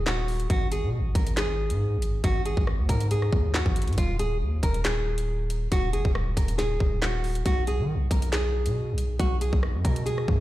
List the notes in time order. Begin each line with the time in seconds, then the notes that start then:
Already playing: D#1
0.06 F#4, snare, clap
0.28 open hi-hat
0.40 closed hi-hat
0.50 G#1 F#4, kick, closed hi-hat
0.72 G#4, closed hi-hat
0.83 B2
0.99 G#1
1.15 G#1 A#4, kick, closed hi-hat
1.27 closed hi-hat
1.37 G#4, snare, clap, closed hi-hat
1.70 G#2, closed hi-hat
1.97 G#1
2.02 closed hi-hat
2.24 G#1 F#4, kick, closed hi-hat
2.46 G#4, closed hi-hat
2.57 G#1, kick
2.67 cross-stick
2.79 D#2
2.89 G#2 A#4, kick, closed hi-hat
3.00 closed hi-hat
3.11 G#4, closed hi-hat
3.22 cross-stick
3.32 D#2, kick
3.54 F#4, snare, clap
3.66 G#1, kick
3.76 closed hi-hat
3.82 closed hi-hat
3.88 G#2, closed hi-hat
3.93 closed hi-hat
3.98 D#1 F4, kick, closed hi-hat
4.19 G#4, closed hi-hat
4.41 D#2
4.63 D#1 A#4, kick, closed hi-hat
4.74 closed hi-hat
4.85 G#4, snare, clap, closed hi-hat
5.18 closed hi-hat
5.50 closed hi-hat
5.72 D#1 F#4, kick, closed hi-hat
5.93 F#1 G#4, closed hi-hat
6.05 D#1, kick
6.15 cross-stick
6.37 D#1 A#4, kick, closed hi-hat
6.48 closed hi-hat
6.58 G#4, snare, closed hi-hat
6.80 D#1, kick
7.02 F#4, snare, clap
7.24 open hi-hat
7.35 closed hi-hat
7.46 B1 F#4, kick, closed hi-hat
7.67 G#4, closed hi-hat
7.79 D#3
7.95 B1
8.11 B1 A#4, kick, closed hi-hat
8.22 closed hi-hat
8.32 G#4, snare, clap, closed hi-hat
8.66 B2, closed hi-hat
8.93 B1
8.98 closed hi-hat
9.19 B1 F#4, kick, closed hi-hat
9.41 G#4, closed hi-hat
9.53 B1, kick
9.63 cross-stick
9.75 F#2
9.85 B2 A#4, kick, closed hi-hat
9.96 closed hi-hat
10.06 G#4, closed hi-hat
10.18 cross-stick
10.28 F#2, kick